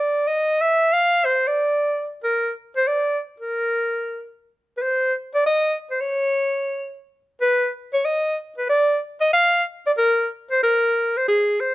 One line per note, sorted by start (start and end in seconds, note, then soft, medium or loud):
0.00 0.29 D5 medium
0.27 0.63 D#5 loud
0.61 0.94 E5 loud
0.93 1.27 F5 loud
1.25 1.49 C5 medium
1.47 2.10 D5 medium
2.23 2.52 A#4 medium
2.77 2.89 C5 medium
2.87 3.18 D5 medium
3.40 4.32 A#4 medium
4.77 4.84 B4 medium
4.82 5.13 C5 loud
5.34 5.45 D5 loud
5.46 5.76 D#5 loud
5.91 6.02 C5 medium
6.00 6.96 C#5 medium
7.41 7.71 B4 medium
7.93 8.06 C#5 medium
8.05 8.37 D#5 medium
8.58 8.68 B4 medium
8.69 8.99 D5 loud
9.21 9.32 D#5 loud
9.33 9.63 F5 loud
9.86 9.92 D5 medium
9.98 10.28 A#4 loud
10.51 10.62 C5 medium
10.63 11.19 A#4 medium
11.17 11.27 C5 medium
11.28 11.62 G#4 medium
11.60 11.75 C5 medium